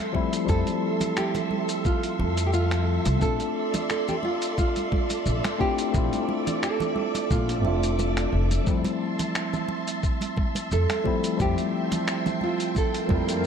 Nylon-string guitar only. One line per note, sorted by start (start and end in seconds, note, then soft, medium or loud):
0.49 1.17 A4 loud
1.18 1.85 G4 loud
1.86 2.43 F4 medium
2.46 2.53 G4 medium
2.53 3.18 F4 medium
3.22 3.86 A4 loud
3.90 4.08 A4 loud
4.08 4.13 G4 medium
4.25 4.57 F4 medium
4.58 5.60 F4 medium
5.61 6.63 G4 loud
6.63 7.27 A4 loud
7.31 8.29 F4 medium
10.73 11.41 A4 loud
11.41 12.43 G4 loud
12.43 12.75 F4 medium
12.78 13.46 A4 medium